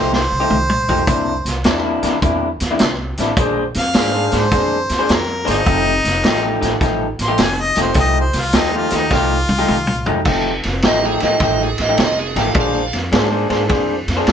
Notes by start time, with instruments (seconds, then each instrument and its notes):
Already playing: upright bass C2, clean electric guitar F3 A3 D#4 G4, harmonica C5
0.13 harmonica C5, snare
0.32 upright bass C2
0.40 clean electric guitar F3 A3 D#4 G4
0.50 upright bass C2, mid tom
0.70 mid tom
0.89 upright bass B1, clean electric guitar F3 A3 D#4 G4, floor tom
1.07 upright bass C2, clean electric guitar C3 A#3 D4 E4, kick, closed hi-hat
1.45 upright bass C2, snare, closed hi-hat
1.64 upright bass E2, clean electric guitar C3 A#3 D4 E4, snare, closed hi-hat
1.84 clean electric guitar C3 A#3 D4 E4
2.03 upright bass E2, clean electric guitar C3 A#3 D4 E4, snare, closed hi-hat
2.22 upright bass E2, clean electric guitar C3 A#3 D4 E4, kick, closed hi-hat
2.60 upright bass E2, snare, closed hi-hat
2.71 clean electric guitar C3 A#3 D4 E4
2.79 upright bass C2, snare, closed hi-hat
3.17 upright bass A1, clean electric guitar C3 A#3 D4 E4, snare, closed hi-hat
3.37 upright bass A#1, clean electric guitar A#3 D4 G#4 C5, kick, closed hi-hat
3.74 upright bass F2, harmonica F5, snare, closed hi-hat
3.94 upright bass G#2, clean electric guitar A#3 D4 G#4 C5, snare, closed hi-hat
4.14 clean electric guitar A#3 D4 G#4 C5
4.32 upright bass G#2, clean electric guitar A#3 D4 G#4 C5, snare, closed hi-hat
4.37 harmonica C5
4.52 upright bass F2, clean electric guitar A#3 D4 G#4 C5, kick, snare, closed hi-hat
4.89 upright bass F2, snare, closed hi-hat
4.99 clean electric guitar A#3 D4 G#4 C5
5.09 upright bass F2, snare, closed hi-hat
5.14 harmonica A#4
5.45 upright bass G1, clean electric guitar A#3 D4 G#4 C5, snare, closed hi-hat
5.50 harmonica D#4
5.65 upright bass F1, clean electric guitar F3 A3 D#4 G4, kick, closed hi-hat
6.05 upright bass F1, snare, closed hi-hat
6.24 upright bass A1, clean electric guitar F3 A3 D#4 G4, snare, closed hi-hat
6.43 clean electric guitar F3 A3 D#4 G4
6.61 upright bass A1, clean electric guitar F3 A3 D#4 G4, snare, closed hi-hat
6.80 upright bass A1, clean electric guitar F3 A3 D#4 G4, kick, snare, closed hi-hat
7.19 upright bass A1, harmonica C6, snare, closed hi-hat
7.28 clean electric guitar F3 A3 D#4 G4
7.38 upright bass F1, snare, closed hi-hat
7.42 harmonica G#5
7.62 harmonica D#5
7.76 upright bass F1, clean electric guitar F3 A3 D#4 G4, snare, closed hi-hat
7.81 harmonica C5
7.94 upright bass C2, clean electric guitar F3 A3 D#4 G4, kick, snare, closed hi-hat
8.00 harmonica D#5
8.20 harmonica C5
8.33 upright bass C2, snare, closed hi-hat
8.39 harmonica F4
8.52 upright bass D#2, clean electric guitar F3 A3 D#4 G4, snare, closed hi-hat
8.58 harmonica D#4
8.73 clean electric guitar F3 A3 D#4 G4, harmonica F4
8.90 upright bass D#2, clean electric guitar F3 A3 D#4 G4, snare, closed hi-hat
8.96 harmonica D#4
9.11 upright bass C2, clean electric guitar F3 A3 D#4 G4, harmonica F4, kick, snare
9.49 upright bass C2, high tom
9.58 clean electric guitar F3 A3 D#4 G4
9.68 upright bass C2, mid tom
9.87 mid tom
10.06 upright bass C2, clean electric guitar F3 A3 D#4 G4, floor tom
10.25 upright bass F1, clean electric guitar F3 A3 D#4 G4, kick, crash
10.63 upright bass F1, snare, ride
10.82 upright bass A1, clean electric guitar F3 A3 D#4 G4, snare, ride
10.87 electric slide guitar D#5
11.03 clean electric guitar F3 A3 D#4 G4, electric slide guitar G#4
11.20 upright bass A1, clean electric guitar F3 A3 D#4 G4, electric slide guitar D#5, snare, ride
11.40 upright bass A1, clean electric guitar F3 A3 D#4 G4, electric slide guitar D#5, kick, snare, ride
11.63 electric slide guitar G#4
11.78 upright bass A1, electric slide guitar D#5, snare, ride
11.89 clean electric guitar F3 A3 D#4 G4
11.98 upright bass F1, electric slide guitar D#5, snare, ride
12.19 electric slide guitar G#4
12.36 upright bass A1, clean electric guitar F3 A3 D#4 G4, electric slide guitar F5, snare, ride
12.54 upright bass A#1, clean electric guitar A#3 D4 G#4 C5, kick, ride
12.60 electric slide guitar F5
12.93 upright bass F2, snare, ride
13.12 upright bass G#2, clean electric guitar A#3 D4 G#4 C5, snare, ride
13.31 clean electric guitar A#3 D4 G#4 C5
13.49 upright bass G#2, clean electric guitar A#3 D4 G#4 C5, snare, ride
13.68 upright bass F2, clean electric guitar A#3 D4 G#4 C5, kick, snare, ride
14.08 upright bass F2, snare, ride
14.17 clean electric guitar A#3 D4 G#4 C5
14.27 upright bass F2, snare, ride